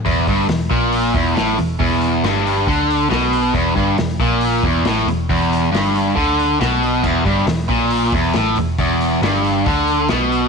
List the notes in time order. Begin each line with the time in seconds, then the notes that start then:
0.06 E1 E2, kick, open hi-hat
0.27 G1 G2, kick, open hi-hat
0.49 E1 E2, snare, open hi-hat
0.71 A#1 A#2, kick, open hi-hat
0.92 open hi-hat
1.14 E1 E2, kick, open hi-hat
1.35 A1 A2, snare, open hi-hat
1.58 E1 E2, open hi-hat
1.80 E1 E2, kick, open hi-hat
2.01 open hi-hat
2.23 G1 G2, snare, open hi-hat
2.47 open hi-hat
2.67 D2 D3, kick, open hi-hat
2.90 open hi-hat
3.10 B1 B2, snare, open hi-hat
3.33 open hi-hat
3.54 E1 E2, kick, open hi-hat
3.76 G1 G2, kick, open hi-hat
3.98 E1 E2, snare, open hi-hat
4.20 A#1 A#2, kick, open hi-hat
4.41 open hi-hat
4.63 E1 E2, kick, open hi-hat
4.83 A1 A2, snare, open hi-hat
5.06 E1 E2, open hi-hat
5.29 E1 E2, kick, open hi-hat
5.53 open hi-hat
5.72 G1 G2, snare, open hi-hat
5.95 open hi-hat
6.15 D2 D3, kick, open hi-hat
6.39 open hi-hat
6.60 B1 B2, snare, open hi-hat
6.83 open hi-hat
7.02 E1 E2, kick, crash
7.25 G1 G2, kick, open hi-hat
7.46 E1 E2, snare, open hi-hat
7.68 A#1 A#2, kick, open hi-hat
7.90 open hi-hat
8.12 E1 E2, kick, open hi-hat
8.33 A1 A2, snare, open hi-hat
8.56 E1 E2, open hi-hat
8.78 E1 E2, kick, open hi-hat
9.01 open hi-hat
9.22 G1 G2, snare, open hi-hat
9.44 open hi-hat
9.66 D2 D3, kick, open hi-hat
9.87 open hi-hat
10.08 B1 B2, snare, open hi-hat
10.32 open hi-hat